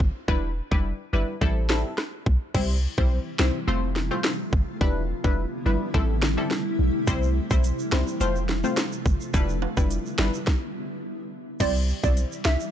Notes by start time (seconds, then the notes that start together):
0.00 G1, kick
0.28 E1 G3 D4 E4 B4, kick
0.71 F1 G3 D4 E4 B4, kick
1.13 G1 G3 D4 E4 B4
1.41 A1 G3 C4 E4 A4, kick
1.69 G3 C4 E4 A4, finger snap, snare
1.98 cross-stick, snare
2.26 B1, kick
2.54 C2 C3 E3 G3 C4 E4 C5, kick, crash
2.98 B1 G3 C4 E4 C5, kick
3.39 C2 G3 C4 E4 C5, finger snap, snare
3.67 F1 F3 A3 C4 F4 C5
3.96 snare
4.11 A3 C4 F4 C5
4.24 finger snap, snare
4.53 G1, kick
4.81 E1 D3 G3 B3 D4 E4 B4, kick
5.24 F1 G3 D4 E4 B4, kick
5.66 G1 G3 D4 E4 B4
5.94 A1 C3 G3 A3 C4 E4 A4, kick
6.22 finger snap, snare
6.37 G3 C4 E4 A4
6.51 snare
6.79 B1
7.07 C2 E3 G3 C4 E4 C5, kick, closed hi-hat, shaker
7.22 shaker
7.51 B1 G3 C4 E4 C5, kick, shaker
7.64 closed hi-hat, shaker
7.79 shaker
7.92 C2 G3 C4 E4 C5, finger snap, snare
8.07 shaker
8.20 F1 C3 F3 A3 C4 F4 C5, closed hi-hat, shaker
8.36 shaker
8.49 snare
8.64 A3 C4 F4 C5, shaker
8.77 finger snap, snare, closed hi-hat, shaker
8.92 shaker
9.05 G1, kick, shaker
9.21 shaker
9.34 E1 D3 G3 B3 D4 E4 B4, kick, closed hi-hat, shaker
9.49 shaker
9.62 high timbale
9.77 F1 G3 D4 E4 B4, kick, shaker
9.91 closed hi-hat, shaker
10.06 shaker
10.18 G1 G3 D4 E4 B4, finger snap, snare
10.34 shaker
10.47 kick, snare
11.60 C2 C3 E3 G3 C4 E4 C5 D5, kick, closed hi-hat, crash, shaker
11.75 shaker
11.89 shaker
12.03 B1 G3 C4 E4 C5 D5, kick, shaker
12.17 closed hi-hat, shaker
12.32 shaker
12.45 C2 E5, finger snap, snare
12.60 shaker